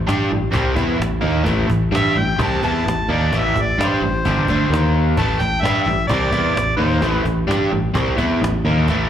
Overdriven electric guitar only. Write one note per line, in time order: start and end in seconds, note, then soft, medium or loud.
0.07 0.30 G3 medium
0.07 0.30 D4 medium
0.07 0.31 G4 medium
0.30 0.50 A2 medium
0.30 0.50 E3 medium
0.52 0.75 C3 medium
0.52 0.75 G3 loud
0.52 0.75 C4 loud
0.75 0.97 E3 medium
0.75 0.98 B3 medium
0.75 0.99 E4 medium
0.98 1.18 A2 medium
0.98 1.19 E3 medium
1.21 1.44 D#3 medium
1.21 1.43 A#3 medium
1.21 1.44 D#4 loud
1.44 1.66 A2 medium
1.44 1.66 E3 loud
1.44 1.69 A3 loud
1.67 1.88 A2 medium
1.67 1.88 E3 medium
1.91 2.14 G3 medium
1.91 2.15 D4 medium
1.91 2.16 G4 medium
2.15 2.35 A2 medium
2.15 2.34 E3 medium
2.38 2.62 C3 loud
2.38 2.62 G3 loud
2.38 2.62 C4 loud
2.63 2.85 E3 medium
2.63 2.85 B3 medium
2.63 2.86 E4 medium
2.85 3.05 A2 medium
2.85 3.05 E3 medium
3.09 3.32 D#3 medium
3.09 3.32 A#3 medium
3.09 3.32 D#4 medium
3.32 3.54 A2 medium
3.32 3.55 E3 loud
3.32 3.55 A3 loud
3.55 3.74 A2 medium
3.55 3.75 E3 medium
3.79 4.01 G3 medium
3.79 4.02 D4 medium
3.79 4.02 G4 medium
4.03 4.21 A2 medium
4.03 4.21 E3 medium
4.25 4.48 G2 loud
4.25 4.47 D3 loud
4.25 4.48 G3 loud
4.49 4.72 D3 medium
4.49 4.72 A3 medium
4.49 4.72 D4 medium
4.72 5.17 D#3 medium
4.72 5.17 A#3 medium
4.72 5.17 D#4 medium
5.18 5.40 A2 medium
5.18 5.40 E3 loud
5.18 5.41 A3 loud
5.41 5.60 A2 medium
5.41 5.60 E3 medium
5.63 5.86 G3 medium
5.63 5.87 D4 medium
5.63 5.87 G4 loud
5.87 6.06 A2 medium
5.87 6.06 E3 medium
6.10 6.31 C3 medium
6.10 6.31 G3 loud
6.10 6.32 C4 loud
6.31 6.54 E3 medium
6.31 6.55 B3 medium
6.31 6.55 E4 medium
6.55 6.74 A2 soft
6.55 6.75 E3 medium
6.77 7.01 D#3 medium
6.77 7.01 A#3 medium
6.77 7.02 D#4 medium
7.02 7.23 A2 loud
7.02 7.23 E3 loud
7.02 7.25 A3 medium
7.24 7.44 A2 medium
7.24 7.44 E3 medium
7.47 7.70 G3 medium
7.47 7.71 D4 medium
7.47 7.71 G4 medium
7.71 7.90 A2 medium
7.71 7.90 E3 medium
7.94 8.16 C3 loud
7.94 8.18 G3 loud
7.94 8.17 C4 loud
8.17 8.40 E3 medium
8.17 8.41 B3 medium
8.17 8.41 E4 medium
8.42 8.60 A2 medium
8.42 8.61 E3 medium
8.65 8.88 D#3 medium
8.65 8.88 A#3 medium
8.65 8.88 D#4 medium
8.89 9.10 A2 medium
8.89 9.10 E3 loud
8.89 9.10 A3 medium